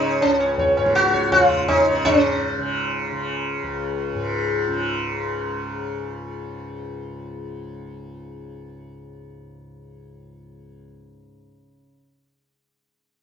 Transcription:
Already playing: tanpura C#2 G#2 C#3, sitar D#4
0.02 sitar C#5, tabla na
0.21 tanpura C#2, sitar C#4, tabla tin
0.40 sitar C#5, tabla na
0.58 sitar C#5, tabla tin, tabla ge
0.77 tanpura G#2, sitar C#5, tabla na
0.86 tabla ke
0.95 sitar F#4, tabla te
1.05 tabla te
1.14 sitar C#5, tabla ke
1.23 tabla te
1.31 tanpura C#3, sitar F4, tabla na, tabla ge
1.51 tabla ge
1.68 sitar D#4, tabla na, tabla ge
1.83 tanpura C#3, tabla te
1.88 sitar C#5
2.05 tanpura G#2, sitar C#4, tabla na, tabla ge
2.59 tanpura C#3
3.12 tanpura C#3
3.63 tanpura C#2
4.15 tanpura G#2
4.68 tanpura C#3

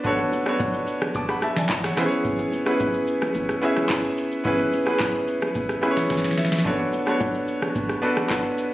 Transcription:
Already playing: grand piano B3 D4 F#4 A4 B4 D5
0.04 grand piano B3 D4 F#4 A4 C#5, kick, low conga, shaker
0.19 low bongo, shaker
0.32 high bongo, shaker
0.46 grand piano B3 D4 F#4 A4 C#5, cross-stick, shaker
0.60 kick, high bongo, low conga, shaker
0.74 high bongo, shaker
0.87 shaker
1.01 cross-stick, low bongo, shaker
1.14 grand piano A5 D6, kick, low conga, shaker
1.29 grand piano F#5 B5, cross-stick, shaker
1.42 grand piano E5 A5, cross-stick, shaker
1.56 grand piano D5 G#5, snare, low bongo, shaker
1.69 kick, clap, high bongo, shaker
1.84 grand piano C#5 F#5, cross-stick, snare, shaker
1.96 grand piano B3 C#4 E4 G#4 C5, cross-stick, snare, shaker
2.06 grand piano C#5
2.11 shaker
2.25 kick, low conga, shaker
2.39 low bongo, shaker
2.52 high bongo, shaker
2.66 grand piano B3 C#4 E4 G#4 B4, cross-stick, shaker
2.80 kick, high bongo, low conga, shaker
2.94 high bongo, shaker
3.07 shaker
3.22 cross-stick, low bongo, shaker
3.35 kick, low conga, shaker
3.49 cross-stick, shaker
3.62 grand piano B3 C#4 E4 G#4 E5, shaker
3.77 cross-stick, low bongo, shaker
3.89 kick, clap, high bongo, shaker
4.04 shaker
4.18 shaker
4.32 shaker
4.44 grand piano B3 C#4 E4 G#4 B4, kick, low conga, shaker
4.59 low bongo, shaker
4.73 high bongo, shaker
4.86 grand piano B3 C#4 E4 G#4 B4, cross-stick, shaker
5.00 kick, clap, high bongo, low conga, shaker
5.14 high bongo, shaker
5.28 shaker
5.42 cross-stick, low bongo, shaker
5.55 kick, low conga, shaker
5.69 cross-stick, shaker
5.81 grand piano B3 C#4 E4 G#4 B4 B5, cross-stick, shaker
5.91 grand piano C#5
5.97 snare, low bongo, shaker
6.10 grand piano G#5, kick, snare, high bongo, shaker
6.17 snare
6.24 snare, shaker
6.31 snare
6.38 grand piano E5, snare, shaker
6.45 snare
6.52 snare, shaker
6.59 snare
6.64 grand piano B3 D4 F#4 A4 C#5, kick, low conga, shaker
6.79 low bongo, shaker
6.93 high bongo, shaker
7.06 grand piano B3 D4 F#4 A4 C#5, cross-stick, shaker
7.20 kick, high bongo, low conga, shaker
7.34 high bongo, shaker
7.48 shaker
7.62 cross-stick, low bongo, shaker
7.75 kick, low conga, shaker
7.89 cross-stick, shaker
8.02 grand piano B3 D4 F#4 A4 B4, shaker
8.17 cross-stick, low bongo, shaker
8.30 kick, clap, high bongo, shaker
8.44 shaker
8.58 shaker

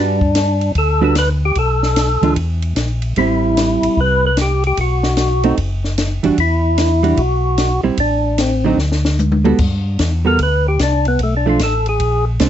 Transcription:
Already playing: tonewheel organ G2 D4, hollow-body jazz guitar G3 D4 F#4 B4
0.21 kick
0.35 snare, hi-hat pedal, ride
0.61 ride
0.75 tonewheel organ D2 A4, kick, ride
1.01 hollow-body jazz guitar G3 D4 F#4 B4, tonewheel organ A4
1.15 tonewheel organ B4, snare, hi-hat pedal, ride
1.45 tonewheel organ G4
1.55 tonewheel organ B1 A4, kick, ride
1.83 snare
1.96 snare, hi-hat pedal, ride
2.21 tonewheel organ D2, hollow-body jazz guitar E3 G#3 D4 F4, ride
2.36 tonewheel organ E2, kick, ride
2.62 ride
2.76 tonewheel organ A#1, snare, hi-hat pedal, ride
3.02 ride
3.16 tonewheel organ A1 E4, hollow-body jazz guitar G3 C4 E4, kick, ride
3.57 snare, hi-hat pedal, ride
3.82 tonewheel organ A1, ride
3.97 tonewheel organ C2 B4, kick
4.27 tonewheel organ B4
4.37 snare, hi-hat pedal, ride
4.41 tonewheel organ G4
4.64 tonewheel organ G4, ride
4.77 tonewheel organ B1 F#4, kick, ride
5.03 snare
5.17 snare, hi-hat pedal, ride
5.43 hollow-body jazz guitar A3 C4 D#4, ride
5.57 tonewheel organ F#1, kick, ride
5.84 snare
5.98 snare, hi-hat pedal, ride
6.23 tonewheel organ F#1, hollow-body jazz guitar E3 G3 D4 F#4, ride
6.38 tonewheel organ E2 E4, kick, ride
6.78 snare, hi-hat pedal, ride
7.03 hollow-body jazz guitar E3 G3 D4 F#4, ride
7.17 tonewheel organ B1 F#4, kick, ride
7.58 snare, hi-hat pedal, ride
7.84 tonewheel organ B1, hollow-body jazz guitar G3 C4 E4
7.98 tonewheel organ A1 D4, kick, ride
8.38 tonewheel organ C4, snare, hi-hat pedal, ride
8.64 hollow-body jazz guitar D3 F#3 C4 D#4
8.77 tonewheel organ D2, snare
8.92 snare
9.05 snare
9.19 hi-hat pedal, high tom
9.32 high tom
9.44 hollow-body jazz guitar G3 B3 F#4 A4, high tom
9.59 tonewheel organ G2, kick, crash
9.99 tonewheel organ E2, kick, snare, hi-hat pedal, ride
10.25 hollow-body jazz guitar G3 B3 F#4 A4, tonewheel organ A#4
10.39 tonewheel organ D2, kick, ride
10.43 tonewheel organ B4
10.68 tonewheel organ G4
10.79 tonewheel organ C2 D4, kick, snare, hi-hat pedal, ride
11.05 tonewheel organ B3, ride
11.19 tonewheel organ B1, kick, ride
11.23 tonewheel organ A3
11.37 tonewheel organ D4
11.46 hollow-body jazz guitar F3 A3 D4, tonewheel organ F4
11.59 tonewheel organ A1 A4, kick, snare, hi-hat pedal, ride
11.86 tonewheel organ G#4, ride
12.00 tonewheel organ A#1, kick, ride
12.40 tonewheel organ C2, hollow-body jazz guitar G#3 C4 D4, kick, snare, hi-hat pedal, ride

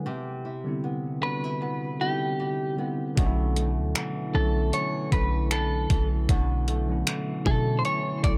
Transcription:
Already playing: nylon-string guitar E3 B3 D4
0.06 nylon-string guitar C3 G4
0.45 nylon-string guitar E4
0.64 tine electric piano D3 G3 B3 C4
0.68 tine electric piano E4
0.84 nylon-string guitar B3
1.21 tine electric piano D3 G3 B3 C4, nylon-string guitar D4, clean electric guitar B4
1.25 tine electric piano F#4
1.44 nylon-string guitar E4
1.62 nylon-string guitar B3
1.99 tine electric piano D3 G3 B3 C4, nylon-string guitar E4, clean electric guitar G4
2.03 tine electric piano D#4
2.10 tine electric piano E4
2.40 nylon-string guitar G4
2.77 tine electric piano D3 G3 B3 C4, nylon-string guitar B3
2.81 tine electric piano E4
3.16 808-style bass B1, nylon-string guitar B2 D4, tine electric piano D3 F#3 A3 C#4, kick, closed hi-hat
3.20 tine electric piano D#4
3.26 tine electric piano E4
3.56 nylon-string guitar A3, closed hi-hat
3.78 808-style bass D2
3.95 nylon-string guitar E3, finger snap, closed hi-hat
4.33 808-style bass B1, tine electric piano D3 F#3 A3 C#4, nylon-string guitar A3, clean electric guitar A4
4.37 tine electric piano F#4
4.73 nylon-string guitar E3, clean electric guitar C#5, closed hi-hat
5.11 808-style bass B1, tine electric piano D3 F#3 A3 C#4, nylon-string guitar A3, clean electric guitar B4, kick, closed hi-hat
5.15 tine electric piano E4
5.51 nylon-string guitar D4, clean electric guitar A4, finger snap, closed hi-hat
5.90 808-style bass B1, nylon-string guitar E3, kick, closed hi-hat
6.29 808-style bass B1, nylon-string guitar B2 D4, kick, closed hi-hat
6.68 nylon-string guitar A3, closed hi-hat
6.87 tine electric piano D3 F#3 A3 C#4
6.92 tine electric piano E4
7.07 nylon-string guitar E3, finger snap, closed hi-hat
7.44 808-style bass B2, tine electric piano D3 F#3 A3 C#4, nylon-string guitar A3, clean electric guitar A4, kick
7.48 tine electric piano E4
7.79 clean electric guitar C5
7.85 nylon-string guitar E3, clean electric guitar C#5, closed hi-hat
8.22 808-style bass B1, tine electric piano D3 F#3 A3 D4, nylon-string guitar A3, clean electric guitar D5, kick, closed hi-hat
8.26 tine electric piano E4

